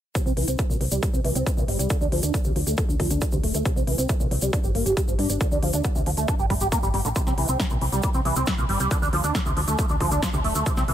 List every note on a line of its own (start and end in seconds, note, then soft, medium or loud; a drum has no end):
0.15 0.21 C3 loud
0.15 kick loud
0.15 closed hi-hat medium
0.15 shaker medium
0.26 0.34 C2 medium
0.26 0.32 C4 medium
0.26 shaker soft
0.37 0.45 C2 medium
0.37 0.46 E3 medium
0.37 open hi-hat loud
0.48 0.56 C2 medium
0.48 0.57 C4 medium
0.48 closed hi-hat medium
0.48 shaker medium
0.58 0.63 C3 loud
0.58 kick loud
0.58 closed hi-hat medium
0.58 shaker medium
0.70 0.78 C2 medium
0.70 0.76 A#2 medium
0.70 shaker soft
0.81 0.89 C2 loud
0.81 0.85 E3 medium
0.81 open hi-hat loud
0.91 0.99 C2 medium
0.91 1.01 G3 medium
0.91 closed hi-hat medium
0.91 shaker medium
1.03 1.09 G3 loud
1.03 kick loud
1.03 closed hi-hat medium
1.03 shaker medium
1.14 1.21 C2 medium
1.14 1.20 C4 medium
1.14 shaker soft
1.24 1.32 C2 medium
1.24 1.34 E3 medium
1.24 open hi-hat loud
1.35 1.43 C2 medium
1.35 1.45 C4 medium
1.35 closed hi-hat medium
1.35 shaker medium
1.46 1.50 C4 medium
1.46 kick loud
1.46 closed hi-hat medium
1.46 shaker medium
1.57 1.65 C2 medium
1.57 1.64 A#2 medium
1.57 shaker soft
1.68 1.76 G1 medium
1.68 1.78 G3 medium
1.68 open hi-hat loud
1.79 1.87 C2 medium
1.79 1.89 G3 medium
1.79 closed hi-hat medium
1.79 shaker medium
1.90 1.97 D3 loud
1.90 kick loud
1.90 closed hi-hat medium
1.90 shaker medium
2.01 2.09 D2 medium
2.01 2.08 D4 medium
2.01 shaker soft
2.12 2.20 D2 medium
2.12 2.22 F3 medium
2.12 open hi-hat loud
2.23 2.31 D2 medium
2.23 2.33 D4 medium
2.23 closed hi-hat medium
2.23 shaker medium
2.34 2.38 D3 loud
2.34 kick loud
2.34 closed hi-hat medium
2.34 shaker medium
2.44 2.53 D2 medium
2.44 2.51 C3 medium
2.44 shaker soft
2.56 2.64 D2 medium
2.56 2.60 F3 medium
2.56 open hi-hat loud
2.67 2.75 D2 medium
2.67 2.76 A3 medium
2.67 closed hi-hat medium
2.67 shaker medium
2.77 2.84 A3 loud
2.77 kick loud
2.77 closed hi-hat medium
2.77 shaker medium
2.89 2.97 D2 medium
2.89 2.95 D4 medium
2.89 shaker soft
3.00 3.08 D2 medium
3.00 3.09 F3 medium
3.00 kick medium
3.00 open hi-hat loud
3.10 3.18 D2 medium
3.10 3.20 D4 medium
3.10 closed hi-hat medium
3.10 shaker medium
3.21 3.25 D4 medium
3.21 kick loud
3.21 closed hi-hat medium
3.21 shaker medium
3.32 3.40 D2 medium
3.32 3.39 C3 medium
3.32 shaker soft
3.44 3.51 D1 loud
3.44 3.53 A3 medium
3.44 open hi-hat loud
3.54 3.62 D2 medium
3.54 3.64 A3 medium
3.54 closed hi-hat medium
3.54 shaker medium
3.65 3.72 C3 loud
3.65 kick loud
3.65 closed hi-hat medium
3.65 shaker medium
3.76 3.84 C2 medium
3.76 3.83 C4 medium
3.76 shaker soft
3.87 3.95 C2 loud
3.87 3.97 E3 medium
3.87 open hi-hat loud
3.98 4.06 C2 medium
3.98 4.08 C4 medium
3.98 closed hi-hat medium
3.98 shaker medium
4.09 4.13 C3 loud
4.09 kick loud
4.09 closed hi-hat medium
4.09 shaker medium
4.20 4.28 C2 medium
4.20 4.27 A#2 medium
4.20 shaker soft
4.31 4.39 C2 medium
4.31 4.35 E3 medium
4.31 open hi-hat loud
4.42 4.50 C2 medium
4.42 4.52 G3 medium
4.42 closed hi-hat medium
4.42 shaker medium
4.53 4.59 D4 loud
4.53 kick loud
4.53 closed hi-hat medium
4.53 shaker medium
4.64 4.72 G1 medium
4.64 4.70 G4 medium
4.64 shaker soft
4.75 4.83 G1 medium
4.75 4.84 A#3 medium
4.75 open hi-hat loud
4.86 4.94 G1 medium
4.86 4.95 G4 medium
4.86 closed hi-hat medium
4.86 shaker medium
4.97 5.01 G4 medium
4.97 kick loud
4.97 closed hi-hat medium
4.97 shaker medium
5.08 5.16 G1 medium
5.08 5.14 F3 medium
5.08 shaker soft
5.19 5.27 G2 medium
5.19 5.28 D4 medium
5.19 open hi-hat loud
5.29 5.38 G1 medium
5.29 5.39 D4 medium
5.29 closed hi-hat medium
5.29 shaker medium
5.41 5.47 D3 loud
5.41 kick loud
5.41 closed hi-hat medium
5.41 shaker medium
5.52 5.59 D2 medium
5.52 5.58 D4 medium
5.52 shaker soft
5.63 5.70 D2 loud
5.63 5.72 F3 medium
5.63 open hi-hat loud
5.73 5.81 D2 medium
5.73 5.83 D4 medium
5.73 closed hi-hat medium
5.73 shaker medium
5.84 5.88 D3 loud
5.84 kick loud
5.84 closed hi-hat medium
5.84 shaker medium
5.96 6.03 D2 medium
5.96 6.02 C3 medium
5.96 shaker soft
6.06 6.14 D2 loud
6.06 6.10 F3 medium
6.06 open hi-hat loud
6.17 6.25 D2 medium
6.17 6.27 A3 medium
6.17 closed hi-hat medium
6.17 shaker medium
6.28 6.35 D4 loud
6.28 kick loud
6.28 closed hi-hat medium
6.28 shaker medium
6.39 6.47 G1 medium
6.39 6.46 G4 medium
6.39 shaker soft
6.50 6.58 G1 medium
6.50 6.54 G3 medium
6.50 kick medium
6.50 open hi-hat loud
6.61 6.69 G1 medium
6.61 6.67 G4 medium
6.61 closed hi-hat medium
6.61 shaker medium
6.72 6.78 A#3 loud
6.72 kick loud
6.72 closed hi-hat medium
6.72 shaker medium
6.83 6.91 G1 medium
6.83 6.89 G3 loud
6.83 shaker soft
6.94 7.02 G1 medium
6.94 7.00 G3 loud
6.94 open hi-hat loud
7.05 7.13 A1 medium
7.05 7.09 D3 loud
7.05 closed hi-hat medium
7.05 shaker medium
7.16 7.22 C3 loud
7.16 kick loud
7.16 closed hi-hat medium
7.16 shaker medium
7.27 7.35 C2 medium
7.27 7.33 C4 medium
7.27 snare soft
7.27 shaker soft
7.38 7.46 C2 loud
7.38 7.47 E3 medium
7.38 open hi-hat loud
7.48 7.56 C2 medium
7.48 7.58 C4 medium
7.48 closed hi-hat medium
7.48 shaker medium
7.60 7.63 C3 loud
7.60 kick loud
7.60 snare loud
7.60 closed hi-hat medium
7.60 shaker medium
7.70 7.78 C2 medium
7.70 7.77 A#2 medium
7.70 shaker soft
7.81 7.89 C2 medium
7.81 7.85 E3 medium
7.81 open hi-hat loud
7.92 8.00 C2 medium
7.92 8.02 G3 medium
7.92 closed hi-hat medium
7.92 shaker medium
8.03 8.10 G3 loud
8.03 kick loud
8.03 closed hi-hat medium
8.03 shaker medium
8.14 8.22 C2 medium
8.14 8.21 C4 medium
8.14 shaker soft
8.25 8.33 C2 loud
8.25 8.35 E3 medium
8.25 open hi-hat loud
8.36 8.44 C2 medium
8.36 8.46 C4 medium
8.36 closed hi-hat medium
8.36 shaker medium
8.46 8.54 E3 medium
8.46 kick loud
8.46 snare loud
8.46 closed hi-hat medium
8.46 shaker medium
8.58 8.66 C2 medium
8.58 8.65 A#2 medium
8.58 shaker soft
8.69 8.77 G1 medium
8.69 8.79 G3 medium
8.69 open hi-hat loud
8.80 8.88 C2 medium
8.80 8.90 G3 medium
8.80 closed hi-hat medium
8.80 shaker medium
8.91 8.97 D3 loud
8.91 kick loud
8.91 closed hi-hat medium
8.91 shaker medium
9.02 9.10 D2 medium
9.02 9.08 D4 medium
9.02 shaker soft
9.13 9.21 D2 loud
9.13 9.22 F3 medium
9.13 open hi-hat loud
9.24 9.32 D2 medium
9.24 9.33 D4 medium
9.24 closed hi-hat medium
9.24 shaker medium
9.35 9.39 D3 loud
9.35 kick loud
9.35 snare loud
9.35 closed hi-hat medium
9.35 shaker medium
9.46 9.54 D2 medium
9.46 9.52 C3 medium
9.46 shaker soft
9.57 9.65 D2 medium
9.57 9.61 F3 medium
9.57 open hi-hat loud
9.68 9.75 D2 medium
9.68 9.77 A3 medium
9.68 closed hi-hat medium
9.68 shaker medium
9.78 9.85 A3 loud
9.78 kick loud
9.78 closed hi-hat medium
9.78 shaker medium
9.89 9.97 D2 medium
9.89 9.96 D4 medium
9.89 shaker soft
10.00 10.08 D2 loud
10.00 10.10 F3 medium
10.00 kick medium
10.00 open hi-hat loud
10.11 10.19 D2 loud
10.11 10.21 D4 medium
10.11 closed hi-hat medium
10.11 shaker medium
10.22 10.29 F3 medium
10.22 kick loud
10.22 snare loud
10.22 closed hi-hat medium
10.22 shaker medium
10.33 10.41 D2 medium
10.33 10.40 C3 medium
10.33 shaker soft
10.44 10.52 D1 medium
10.44 10.54 A3 medium
10.44 open hi-hat loud
10.55 10.63 D2 medium
10.55 10.65 A3 medium
10.55 closed hi-hat medium
10.55 shaker medium
10.66 10.73 C3 loud
10.66 kick loud
10.66 closed hi-hat medium
10.66 shaker medium
10.77 10.85 C2 medium
10.77 10.83 C4 medium
10.77 snare soft
10.77 shaker soft
10.88 10.94 C2 loud
10.88 10.94 E3 medium
10.88 open hi-hat loud